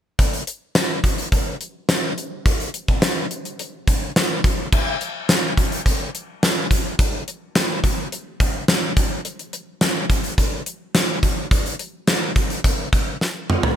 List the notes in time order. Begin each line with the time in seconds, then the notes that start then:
0.19 kick, closed hi-hat
0.33 closed hi-hat
0.47 closed hi-hat
0.75 snare, closed hi-hat
1.04 kick, closed hi-hat
1.18 closed hi-hat
1.32 kick, closed hi-hat
1.61 closed hi-hat
1.89 snare, closed hi-hat
2.18 closed hi-hat
2.46 kick, closed hi-hat
2.60 closed hi-hat
2.74 closed hi-hat
2.88 kick
3.02 snare, closed hi-hat
3.31 closed hi-hat
3.45 closed hi-hat
3.59 closed hi-hat
3.87 kick, closed hi-hat
4.16 snare, closed hi-hat
4.44 kick, closed hi-hat
4.72 kick, crash
5.01 closed hi-hat
5.29 snare, closed hi-hat
5.57 kick, closed hi-hat
5.72 closed hi-hat
5.86 kick, closed hi-hat
6.15 closed hi-hat
6.43 snare, closed hi-hat
6.71 kick, closed hi-hat
6.99 kick, closed hi-hat
7.28 closed hi-hat
7.55 snare, closed hi-hat
7.84 kick, closed hi-hat
8.12 closed hi-hat
8.40 kick, closed hi-hat
8.68 snare, closed hi-hat
8.97 kick, closed hi-hat
9.25 closed hi-hat
9.39 closed hi-hat
9.53 closed hi-hat
9.81 snare, closed hi-hat
10.10 kick, closed hi-hat
10.24 closed hi-hat
10.38 kick, closed hi-hat
10.66 closed hi-hat
10.95 snare, closed hi-hat
11.23 kick, closed hi-hat
11.51 kick, closed hi-hat
11.66 closed hi-hat
11.79 closed hi-hat
12.07 snare, closed hi-hat
12.36 kick, closed hi-hat
12.50 closed hi-hat
12.64 kick, closed hi-hat
12.93 kick, closed hi-hat
13.21 snare
13.50 mid tom
13.63 floor tom